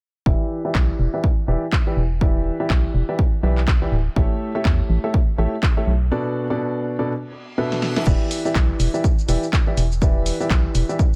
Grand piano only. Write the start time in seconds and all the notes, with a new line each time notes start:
0.26 E3 E4 G4 B4 D5 E5
0.65 E3 E4 G4 B4 D5 E5
1.14 E3 E4 G4 B4 D5 E5
1.48 E3 E4 G4 B4 D5 E5
1.87 E3 E4 G4 B4 D5 E5
2.21 E3 E4 G4 B4 D5 E5
2.60 E3 E4 G4 B4 D5 E5
3.09 E3 E4 G4 B4 D5 E5
3.43 E3 E4 G4 B4 D5 E5
3.82 E3 E4 G4 B4 D5 E5
4.16 A3 E4 G4 A4 C#5 E5
4.55 A3 E4 G4 A4 C#5 E5
5.04 A3 E4 G4 A4 C#5 E5
5.38 A3 E4 G4 A4 C#5 E5
5.77 A3 E4 G4 A4 C#5 E5
6.12 B2 D4 F#4 A4 B4 D5
6.50 B2 D4 F#4 A4 B4 D5
6.99 B2 D4 F#4 A4 B4 D5
7.58 B2 D4 F#4 A4 B4 E5
7.96 E3 D4 F#4 A4 B4 E5
8.06 E3 E4 G4 B4 D5
8.45 E3 E4 G4 B4 D5 E5
8.94 E3 E4 G4 B4 D5 E5
9.28 E3 E4 G4 B4 D5 E5
9.67 E3 E4 G4 B4 D5 E5
10.02 E3 E4 G4 B4 D5 E5
10.40 E3 E4 G4 B4 D5 E5
10.89 E3 E4 G4 B4 D5 E5